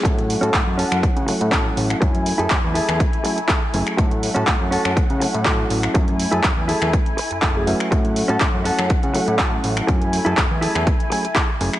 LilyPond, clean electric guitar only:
\new Staff \with { instrumentName = "Clean electric guitar" } { \time 4/4 \key a \major \tempo 4 = 122 r8. <cis' fis' a'>16 r8 <cis' fis' a'>8 r4 <cis' fis' a'>16 r8. | r8. <e' gis' a'>16 r8 <e' gis' a'>8 r4 <e' gis' a'>16 r8. | r8. <cis' fis' a'>16 r8 <cis' fis' a'>8 r4 <cis' fis' a'>16 r8. | r8. <e' gis' a'>16 r8 <e' gis' a'>8 r4 <e' gis' a'>16 r8. |
r8. <cis' fis' a'>16 r8 <cis' fis' a'>8 r4 <cis' fis' a'>16 r8. | r8. <e' gis' a'>16 r8 <e' gis' a'>8 r4 <e' gis' a'>16 r8. | }